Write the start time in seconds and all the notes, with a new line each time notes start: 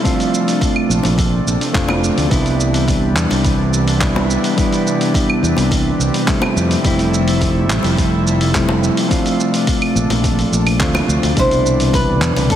Already playing: C3 F3 A3
0.03 A3 C4 D4 F4, kick, open hi-hat, shaker
0.20 open hi-hat, shaker
0.34 shaker
0.48 open hi-hat, shaker
0.61 kick, open hi-hat, shaker
0.76 claves
0.89 A#1, shaker
1.03 A#1, open hi-hat, high bongo, shaker
1.18 kick, open hi-hat, shaker
1.46 A#1, shaker
1.61 open hi-hat, shaker
1.73 F1 A3 C4 D4 F4, kick, clap, open hi-hat, shaker
1.88 high bongo, claves
2.04 shaker
2.18 D2, open hi-hat, shaker
2.29 C2 E3 G3 B3 D4 E4, kick, open hi-hat, shaker
2.46 open hi-hat, shaker
2.60 shaker
2.74 open hi-hat, shaker
2.88 kick, open hi-hat, shaker
3.16 E2, clap, shaker
3.30 C2, open hi-hat, high bongo, shaker
3.44 kick, open hi-hat, shaker
3.74 shaker
3.88 open hi-hat, shaker
4.00 G3 B3 D4 E4, kick, clap, open hi-hat, shaker
4.16 high bongo
4.31 shaker
4.44 open hi-hat, shaker
4.56 G3 B3 D4 E4, kick, open hi-hat, shaker
4.72 open hi-hat, shaker
4.87 shaker
5.01 open hi-hat, shaker
5.14 kick, open hi-hat, shaker
5.30 claves
5.43 E2, shaker
5.57 C2, open hi-hat, high bongo, shaker
5.71 kick, open hi-hat, shaker
5.99 C2, shaker
6.14 open hi-hat, shaker
6.27 G3 A3 C4 E4, kick, clap, open hi-hat, shaker
6.42 high bongo, claves
6.56 F2 F3 A3 E4, shaker
6.71 open hi-hat, shaker
6.83 F1 G3 A3 C4 E4, kick, open hi-hat, shaker
6.99 open hi-hat, shaker
7.14 shaker
7.28 open hi-hat, shaker
7.41 kick, open hi-hat, shaker
7.69 A1, clap, shaker
7.83 F1, open hi-hat, high bongo, shaker
7.98 kick, open hi-hat, shaker
8.27 shaker
8.41 open hi-hat, shaker
8.53 G3 A3 C4 E4, kick, clap, open hi-hat, shaker
8.69 high bongo
8.84 shaker
8.97 open hi-hat, shaker
9.08 A3 C4 D4 F4, kick, open hi-hat, shaker
9.26 open hi-hat, shaker
9.40 shaker
9.54 open hi-hat, shaker
9.67 kick, open hi-hat, shaker
9.82 open hi-hat, claves
9.95 A#1, shaker
10.10 A#1, open hi-hat, high bongo, shaker
10.24 kick, open hi-hat, shaker
10.39 open hi-hat, shaker
10.52 A#1, shaker
10.67 open hi-hat, claves, shaker
10.80 D2 A3 C4 D4 F4, kick, clap, open hi-hat, shaker
10.95 open hi-hat, high bongo, claves, shaker
11.08 D2, shaker
11.23 D2, open hi-hat, shaker
11.36 C2 B2 D3 E3 G3 D4 E4 C5, kick, open hi-hat, shaker
11.51 open hi-hat, shaker
11.66 shaker
11.80 open hi-hat, shaker
11.94 B4, kick, open hi-hat, shaker
12.22 E2, clap, shaker
12.36 C2, open hi-hat, high bongo, shaker
12.50 A4, kick, open hi-hat, shaker